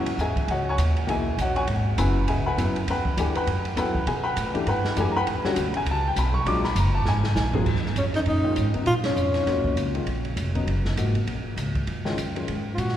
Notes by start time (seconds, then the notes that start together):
Already playing: D#2
0.06 ride
0.18 E2 G#4 D#5 E5 G#5, hi-hat pedal
0.36 muted upright bass stroke, kick, ride
0.48 C#2 F#4 C#5 D#5 F#5, ride
0.69 C#5 F#5 G#5 C#6
0.78 D#2, hi-hat pedal, ride
0.97 ride
1.05 B1 B2 E3 A#3 D#4 G5, ride
1.10 G#4 D#5 E5 G#5
1.38 A#1 D#5 F#5, hi-hat pedal, ride
1.42 F#4 C#5
1.56 C#5 F#5 G#5 C#6, ride
1.67 G#1, ride
1.98 F#1 C#3 F#3 B3 E4 B4 F#5 G#5 B5, hi-hat pedal, ride
2.27 C#2 G#4 D#5 E5 G#5, ride
2.46 B4 F#5 G#5 B5
2.57 F#2 C#3 F#3 B3 E4, hi-hat pedal, ride
2.76 ride
2.87 E2 B4 F#5 G5 B5, ride
3.05 kick
3.17 D2 E3 A3 D4 G4 G#4 G#5, hi-hat pedal, ride
3.35 B4 F#5 G5 B5, ride
3.47 F#2, ride
3.65 ride
3.76 E2 F#3 B3 E4 A4 B4 F#5 G5 B5, hi-hat pedal, ride
3.94 muted upright bass stroke, kick
4.06 B2 G#4 G#5, ride
4.24 B4 F#5 G5 B5
4.36 A2, hi-hat pedal, ride
4.54 E3 A3 D4 G4, muted upright bass stroke, ride
4.66 G2 B4 F#5 G5 B5, ride
4.85 snare
4.96 F#2 E3 A3 D4 G4, hi-hat pedal, ride
5.00 G#4 G#5
5.12 A#5
5.16 B4 F#5 G5 B5
5.27 E2, ride
5.44 D3 G3 C#4 F#4, muted upright bass stroke, snare
5.56 D2, hi-hat pedal, ride
5.67 B1
5.74 G1 G#5, ride
5.86 C#2, ride
5.91 A5
6.07 G5
6.16 B1 B5, hi-hat pedal, ride
6.34 C#6
6.45 A#1 F#3 G#3 D4 F4 D6, ride
6.64 B5, snare
6.75 F#1 A#5, hi-hat pedal, ride
6.95 A5
7.05 G#1 G#5, snare
7.24 snare
7.35 A#1, snare, hi-hat pedal
7.53 F#3 B3 F4 G#4, floor tom
7.66 D#2, kick, crash
7.76 snare
7.86 snare
7.96 F2 C#4, hi-hat pedal, ride
8.14 F#2 D#4, snare, ride
8.25 F#2 A#2 D#4, ride
8.44 D#3 G#3 C#4 F4
8.56 G#2, hi-hat pedal, ride
8.74 C#3 F#3 B3 D#4, muted upright bass stroke, ride
8.86 F#2 A#2 F4, ride
9.03 F2 C#4, snare, ride
9.16 F2, hi-hat pedal
9.34 snare, ride
9.46 D#2 A#3 D#4 F4 F#4, snare, ride
9.64 kick
9.76 C#2, hi-hat pedal, ride
9.94 D#3 G#3 C#4 F4, ride
10.06 A#1, ride
10.25 ride
10.36 F1, hi-hat pedal, ride
10.55 C#3 F#3 B3 D#4, kick, ride
10.67 F#1, ride
10.85 snare
10.97 G#1 F3 A#3 D#4 F#4, hi-hat pedal, ride
11.15 ride
11.27 A#1, ride
11.45 muted upright bass stroke
11.56 C#2, hi-hat pedal, ride
11.75 kick, ride
11.87 D#2, ride
12.05 D#3 G#3 C#4 F4, snare
12.17 F#2, hi-hat pedal, ride
12.35 D#3 G#3 C#4 F4, ride
12.48 G#2, ride
12.74 G#2 F4
12.78 A#2 F#4, hi-hat pedal, ride
12.89 snare